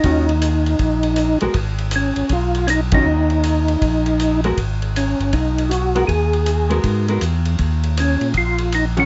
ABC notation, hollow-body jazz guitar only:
X:1
M:4/4
L:1/8
Q:"Swing" 1/4=159
K:Ebm
V:1 name="Hollow-body jazz guitar"
[E,G,DF] z6 [A,CGB] | z6 z [E,G,DF] | z6 z [A,CGB] | z6 z [A,CGB] |
z3 [A,CGB]2 [A,CGB] z2 | z6 z [E,G,DF] |]